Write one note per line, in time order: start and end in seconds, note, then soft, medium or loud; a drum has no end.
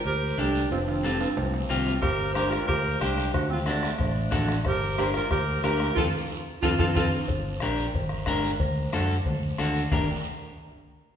0.05 0.32 D2 medium
0.05 0.37 G4 medium
0.05 0.37 A#4 loud
0.05 cowbell medium
0.05 high conga soft
0.05 long guiro medium
0.38 0.65 C2 medium
0.38 0.61 D4 medium
0.38 0.69 D4 medium
0.38 0.61 G4 medium
0.38 0.70 G4 medium
0.38 0.62 A4 medium
0.38 high conga medium
0.38 low timbale medium
0.38 short guiro medium
0.55 short guiro medium
0.71 1.24 F1 medium
0.71 0.80 C4 medium
0.71 0.79 F4 medium
0.71 cowbell loud
0.71 high conga soft
0.71 high timbale medium
0.71 long guiro medium
0.87 1.07 C4 medium
0.87 1.06 F4 medium
0.87 low conga medium
0.87 high timbale medium
1.03 1.27 C4 medium
1.03 1.21 C4 medium
1.03 1.27 F4 medium
1.03 1.19 G4 medium
1.03 1.28 A4 medium
1.03 high conga medium
1.03 high timbale medium
1.03 short guiro medium
1.20 1.58 C4 medium
1.20 1.57 F4 medium
1.20 high timbale medium
1.20 short guiro medium
1.37 1.64 C2 medium
1.37 cowbell medium
1.37 high conga soft
1.37 low timbale loud
1.37 long guiro medium
1.54 low timbale medium
1.69 1.96 C2 medium
1.69 1.93 C4 medium
1.69 1.93 F4 medium
1.69 1.93 G4 medium
1.69 high conga medium
1.69 low conga medium
1.69 low timbale medium
1.69 short guiro medium
1.86 low timbale medium
1.86 short guiro medium
2.01 2.55 G1 medium
2.01 2.33 G4 medium
2.01 2.33 A#4 loud
2.01 bombo low medium
2.01 bombo rim medium
2.01 cowbell loud
2.01 high conga soft
2.01 long guiro medium
2.34 2.59 D4 medium
2.34 2.52 G4 medium
2.34 2.59 G4 medium
2.34 2.59 A#4 medium
2.34 2.51 C5 loud
2.34 bombo rim medium
2.34 high conga medium
2.34 short guiro medium
2.50 2.68 F4 medium
2.50 2.67 A#4 loud
2.50 bombo rim medium
2.50 short guiro medium
2.67 2.95 D2 loud
2.67 2.99 G4 medium
2.67 2.99 A#4 loud
2.67 bombo low medium
2.67 bombo rim medium
2.67 cowbell medium
2.67 high conga soft
2.67 long guiro medium
3.01 3.28 C2 medium
3.01 3.32 D4 medium
3.01 3.24 D4 medium
3.01 3.32 G4 loud
3.01 3.24 G4 medium
3.01 3.25 C5 medium
3.01 bombo rim medium
3.01 high conga medium
3.01 short guiro medium
3.18 bombo rim medium
3.18 short guiro medium
3.34 3.87 D2 medium
3.34 3.49 D4 medium
3.34 3.50 F#4 medium
3.34 bombo low medium
3.34 bombo rim medium
3.34 cowbell loud
3.34 high conga soft
3.34 long guiro medium
3.50 3.57 C4 medium
3.50 3.60 F4 loud
3.50 low conga medium
3.66 4.46 A3 medium
3.66 3.90 D4 medium
3.66 4.46 D4 medium
3.66 3.90 F#4 medium
3.66 3.91 A4 medium
3.66 bombo rim medium
3.66 high conga medium
3.66 short guiro medium
3.83 bombo rim medium
3.83 short guiro medium
3.98 4.26 A1 loud
3.98 bombo low medium
3.98 bombo rim medium
3.98 cowbell medium
3.98 high conga soft
3.98 long guiro medium
4.31 4.59 A1 medium
4.31 4.55 D4 medium
4.31 4.55 F#4 medium
4.31 4.56 A4 loud
4.31 bombo low medium
4.31 bombo rim medium
4.31 high conga medium
4.31 low conga medium
4.31 low timbale medium
4.31 short guiro medium
4.48 bombo rim medium
4.48 short guiro medium
4.65 5.18 G1 medium
4.65 4.97 G4 loud
4.65 4.97 A#4 loud
4.65 bombo low medium
4.65 bombo rim medium
4.65 cowbell loud
4.65 high conga soft
4.65 long guiro medium
4.98 5.22 D4 medium
4.98 5.06 G4 medium
4.98 5.22 G4 medium
4.98 5.22 A#4 medium
4.98 5.08 C5 medium
4.98 bombo rim medium
4.98 high conga medium
4.98 short guiro medium
5.14 5.30 F4 medium
5.14 5.31 A#4 medium
5.14 bombo rim medium
5.14 short guiro medium
5.31 5.57 D2 medium
5.31 5.62 G4 medium
5.31 5.62 A#4 loud
5.31 bombo low medium
5.31 bombo rim medium
5.31 cowbell medium
5.31 high conga soft
5.31 long guiro medium
5.64 5.91 D2 medium
5.64 5.87 D4 medium
5.64 5.94 G4 medium
5.64 5.88 G4 medium
5.64 5.95 A#4 loud
5.64 5.88 A#4 medium
5.64 bombo rim medium
5.64 high conga medium
5.64 low timbale medium
5.64 short guiro medium
5.80 bombo rim medium
5.80 short guiro medium
5.95 6.09 F2 loud
5.95 6.08 C4 medium
5.95 6.04 F4 loud
5.95 6.08 F4 medium
5.95 6.05 A4 medium
5.95 6.08 A4 medium
5.95 bombo low loud
5.95 low conga loud
5.95 high timbale medium
5.95 long guiro loud
6.62 6.75 F2 loud
6.62 6.74 C4 medium
6.62 6.70 F4 loud
6.62 6.74 F4 loud
6.62 6.74 A4 medium
6.62 6.72 A4 loud
6.62 bombo low medium
6.62 low conga loud
6.62 high timbale loud
6.62 long guiro medium
6.78 6.92 F2 medium
6.78 6.90 C4 medium
6.78 6.86 F4 medium
6.78 6.90 F4 medium
6.78 6.90 A4 medium
6.78 6.88 A4 medium
6.78 bombo low loud
6.78 low conga loud
6.78 high timbale loud
6.78 long guiro medium
6.95 7.08 F2 medium
6.95 7.07 C4 loud
6.95 7.04 F4 medium
6.95 7.07 F4 medium
6.95 7.07 A4 medium
6.95 7.05 A4 loud
6.95 bombo low loud
6.95 low conga medium
6.95 high timbale loud
6.95 long guiro medium
7.28 7.55 G1 medium
7.28 bombo low medium
7.28 cowbell loud
7.28 high conga soft
7.28 long guiro medium
7.60 7.88 A#1 medium
7.60 7.85 D4 medium
7.60 7.85 G4 medium
7.60 7.85 A#4 medium
7.60 bombo rim medium
7.60 high conga loud
7.60 short guiro medium
7.78 short guiro medium
7.94 8.20 G1 medium
7.94 bombo low medium
7.94 cowbell medium
7.94 high conga soft
7.94 low conga medium
7.94 long guiro medium
8.09 bombo rim medium
8.26 8.53 G1 medium
8.26 8.50 D4 medium
8.26 8.50 G4 medium
8.26 8.51 A#4 loud
8.26 bombo low medium
8.26 bombo rim medium
8.26 high conga medium
8.26 short guiro medium
8.45 short guiro medium
8.60 8.86 D2 loud
8.60 bombo low medium
8.60 cowbell loud
8.60 high conga soft
8.60 low conga medium
8.60 long guiro medium
8.93 9.19 F#2 medium
8.93 9.16 D4 medium
8.93 9.16 F#4 medium
8.93 9.17 A4 loud
8.93 bombo rim medium
8.93 high conga loud
8.93 short guiro medium
9.11 high conga medium
9.11 short guiro medium
9.25 9.52 D2 medium
9.25 bombo low medium
9.25 cowbell medium
9.25 high conga soft
9.25 low conga medium
9.25 long guiro medium
9.58 9.86 D2 medium
9.58 9.82 D4 medium
9.58 9.82 F#4 medium
9.58 9.82 A4 medium
9.58 bombo rim medium
9.58 high conga medium
9.58 low conga medium
9.58 short guiro medium
9.76 short guiro medium
9.92 10.07 G1 medium
9.92 10.07 D4 medium
9.92 10.07 G4 medium
9.92 10.07 A#4 medium
9.92 bombo low loud
9.92 low conga loud
9.92 low timbale medium
9.92 long guiro medium